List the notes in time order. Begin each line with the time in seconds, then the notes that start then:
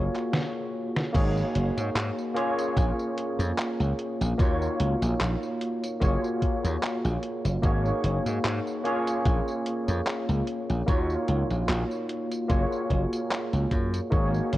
Already playing: A#3 F4 F#4 G#4 C#5
0.15 clap, closed hi-hat
0.34 snare
0.97 snare
1.13 G#1 A#3 D#4 F#4 G#4 C#5, kick, closed hi-hat, crash, tambourine
1.37 tambourine
1.55 F#1, closed hi-hat
1.77 G#2, closed hi-hat, tambourine
1.95 G#2, clap, closed hi-hat, tambourine
2.19 tambourine
2.34 A#3 C#4 F4 G#4 C#5, closed hi-hat
2.59 closed hi-hat, tambourine
2.77 A#1, kick, closed hi-hat, tambourine
2.99 tambourine
3.18 closed hi-hat
3.39 F2, closed hi-hat, tambourine
3.58 clap, closed hi-hat, tambourine
3.80 C#2, tambourine
3.99 closed hi-hat
4.21 A#1, closed hi-hat, tambourine
4.38 D#2 A#3 D#4 F4 F#4 C#5, kick, closed hi-hat, tambourine
4.62 tambourine
4.80 C#2, closed hi-hat
5.02 A#1, closed hi-hat, tambourine
5.20 A#1, clap, closed hi-hat, tambourine
5.43 tambourine
5.61 closed hi-hat
5.83 closed hi-hat, tambourine
6.00 F#1 A#3 F4 F#4 G#4 C#5, kick, closed hi-hat, tambourine
6.24 tambourine
6.42 kick, closed hi-hat
6.64 D#2, closed hi-hat, tambourine
6.83 clap, closed hi-hat, tambourine
7.05 A#1, tambourine
7.23 closed hi-hat
7.45 F#1, closed hi-hat, tambourine
7.62 G#1 A#3 D#4 F#4 G#4 C#5, kick, closed hi-hat, tambourine
7.86 tambourine
8.04 F#1, closed hi-hat
8.26 G#2, closed hi-hat, tambourine
8.45 G#2, clap, closed hi-hat, tambourine
8.67 tambourine
8.84 A#3 C#4 F4 G#4 C#5, closed hi-hat
9.08 closed hi-hat, tambourine
9.26 A#1, kick, closed hi-hat, tambourine
9.48 tambourine
9.66 closed hi-hat
9.88 F2, closed hi-hat, tambourine
10.07 clap, closed hi-hat, tambourine
10.29 C#2, tambourine
10.47 closed hi-hat
10.69 A#1, closed hi-hat, tambourine
10.86 D#2 A#3 D#4 F4 F#4 C#5, kick, closed hi-hat, tambourine
11.10 tambourine
11.28 C#2, closed hi-hat
11.51 A#1, closed hi-hat, tambourine
11.69 A#1, clap, closed hi-hat, tambourine
11.91 tambourine
12.09 closed hi-hat
12.32 closed hi-hat, tambourine
12.48 F#1 A#3 F4 F#4 G#4 C#5, kick, closed hi-hat, tambourine
12.72 tambourine
12.90 F#1, kick, closed hi-hat
13.13 closed hi-hat, tambourine
13.31 clap, closed hi-hat, tambourine
13.53 C#2, closed hi-hat, tambourine
13.71 F#2, kick, closed hi-hat
13.94 closed hi-hat, tambourine
14.10 G#1 A#3 D#4 F#4 G#4 C#5, kick, closed hi-hat, tambourine
14.34 tambourine
14.53 F#1, closed hi-hat